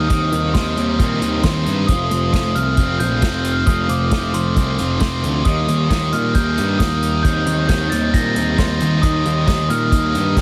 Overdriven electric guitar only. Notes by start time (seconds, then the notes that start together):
Already playing: D#4
0.10 D#3 G3 C4 D#4
1.89 F3 A3 C4 F4
3.67 F3 A3 C4 F4
5.45 D#3 G3 A#3 D#4
7.24 D#3 G3 C4 D#4
9.03 D#3 G3 A#3 D#4